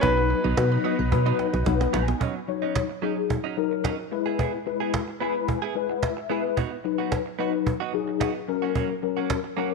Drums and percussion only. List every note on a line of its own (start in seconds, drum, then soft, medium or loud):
0.03 cajon bass loud
0.17 cajon slap soft
0.30 cajon slap soft
0.45 cajon slap soft
0.57 cajon bass loud
0.57 cajon slap loud
0.57 cajon slap medium
0.72 cajon slap soft
0.85 cajon slap soft
0.99 cajon slap soft
1.12 cajon bass loud
1.12 cajon slap medium
1.26 cajon slap medium
1.39 cajon slap medium
1.54 cajon slap medium
1.66 cajon bass loud
1.66 cajon slap medium
1.81 cajon slap medium
1.94 cajon slap loud
2.08 cajon slap medium
2.21 cajon bass loud
2.76 cajon bass loud
2.76 cajon slap loud
2.76 cajon slap medium
3.30 cajon bass loud
3.84 cajon bass loud
3.84 cajon slap loud
3.84 cajon slap medium
4.39 cajon bass loud
4.94 cajon bass loud
4.94 cajon slap loud
4.94 cajon slap medium
5.48 cajon bass loud
6.03 cajon bass loud
6.03 cajon slap loud
6.03 cajon slap medium
6.57 cajon bass loud
7.12 cajon bass loud
7.12 cajon slap medium
7.67 cajon bass loud
8.21 cajon bass loud
8.21 cajon slap loud
8.21 cajon slap medium
8.75 cajon bass loud
9.30 cajon bass loud
9.30 cajon slap medium